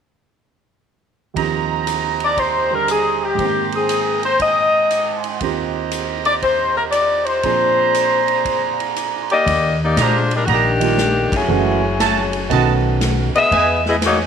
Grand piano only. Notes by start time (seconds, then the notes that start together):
1.34 D#2 D#3 F3 C4
1.39 G4
2.70 D3 G3 G4
3.35 G#2 D#3
3.40 A#3 C4
3.46 G5
5.41 D#2 D#3 C4 F4 G4
7.44 A#2 F3 C4 D4 G#4
10.80 D#3 G3 A#3 D4 F4
11.48 E3 G#3 A3 C#4 F#4
12.50 D#3 A3 B3 C#4 F#4